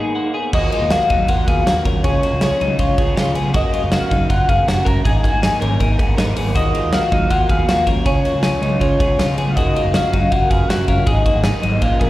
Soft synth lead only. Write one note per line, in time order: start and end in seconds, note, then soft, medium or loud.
0.00 0.30 D#4 medium
0.54 0.71 D#5 loud
0.72 0.93 D#5 medium
0.91 1.30 F5 medium
1.29 1.49 F#5 medium
1.48 1.85 F5 loud
2.03 2.39 C#5 medium
2.42 2.77 C#5 medium
2.79 3.32 C#5 medium
3.55 3.72 D#5 medium
3.74 3.82 D#5 loud
3.92 4.27 F5 loud
4.30 4.50 F#5 medium
4.49 4.69 F5 loud
4.68 4.89 F#5 loud
4.87 5.06 A#5 loud
5.06 6.14 G#5 loud
6.56 6.95 D#5 loud
6.94 7.32 F5 loud
7.30 7.49 F#5 loud
7.50 7.85 F5 loud
8.06 8.41 C#5 loud
8.43 8.78 C#5 medium
8.80 9.33 C#5 loud
9.50 9.57 F5 medium
9.56 9.93 D#5 loud
9.94 10.33 F5 loud
10.32 10.52 F#5 loud
10.50 10.70 F5 loud
10.68 10.89 F#5 loud
10.88 11.09 F5 loud
11.08 11.83 D#5 loud
12.01 12.10 A#3 medium